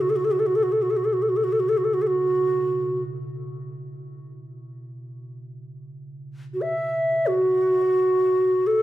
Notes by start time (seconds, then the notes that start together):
Already playing: B2 C#3
0.01 F#4
0.10 A4
0.16 F#4
0.25 A4
0.32 F#4
0.39 A4
0.46 F#4
0.55 A4
0.63 F#4
0.72 A4
0.82 F#4
0.90 A4
0.97 F#4
1.05 A4
1.13 F#4
1.22 A4
1.29 F#4
1.37 A4
1.44 F#4
1.52 A4
1.60 F#4
1.69 A4
1.77 F#4
1.84 A4
1.94 F#4
2.02 A4
2.07 F#4
6.54 F#4
6.62 E5
7.27 F#4
8.67 A4